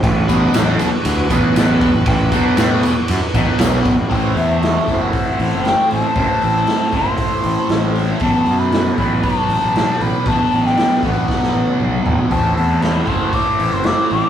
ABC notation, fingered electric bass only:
X:1
M:4/4
L:1/16
Q:1/4=117
K:Ador
V:1 name="Fingered electric bass" clef=bass
A,,,4 A,,,2 z2 D,,2 A,,,4- A,,, A,,, | A,,,2 z2 A,,2 z2 F,, z A,,, z B,,,2 A,,,2 | A,,,2 E,,4 F,,,2 z2 A,,, F,,,2 z A,,, z | F,,, z A,,,2 z2 F,,,2 z2 A,,, z A,,,4 |
A,,,2 F,,4 A,,,2 z2 A,,, A,,,2 z A,,, z | A,,, z A,,,2 z2 A,,,2 z2 A,,, z B,,,2 A,,,2 | A,,,2 E,,4 F,,,2 z2 A,,, F,,,2 z A,,, z |]